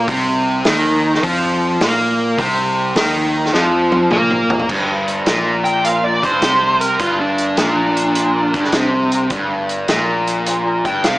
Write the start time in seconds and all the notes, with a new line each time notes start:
0.08 C2 C3, kick, open hi-hat
0.65 D#2 D#3, snare, open hi-hat
1.15 snare
1.23 F2 F3, kick, open hi-hat
1.81 A#2 A#3, snare, open hi-hat
2.38 C2 C3, kick, open hi-hat
2.95 D#2 D#3, snare, open hi-hat
3.46 snare
3.54 F2 F3, snare
3.92 high tom
4.11 A#2 A#3, mid tom
4.30 mid tom
4.50 floor tom
4.60 floor tom
4.69 G1 G2, kick, crash
5.08 closed hi-hat
5.26 A#1 A#2, snare, closed hi-hat
5.64 G5, closed hi-hat
5.85 F5, closed hi-hat
6.04 D5
6.23 G2 C5, kick, closed hi-hat
6.41 C2 C3, snare, closed hi-hat
6.80 A#4, closed hi-hat
7.00 G1 G2 F4, kick, closed hi-hat
7.20 D4
7.38 closed hi-hat
7.57 A#1 A#2, snare, closed hi-hat
7.97 closed hi-hat
8.15 closed hi-hat
8.54 G1 G2, kick, closed hi-hat
8.64 snare
8.72 C2 C3, snare, closed hi-hat
9.12 closed hi-hat
9.30 G1 G2, kick, closed hi-hat
9.69 closed hi-hat
9.88 A#1 A#2, snare, closed hi-hat
10.27 closed hi-hat
10.47 closed hi-hat
10.85 G1 G2 G5, kick, closed hi-hat
11.04 C2 C3 F5, snare, closed hi-hat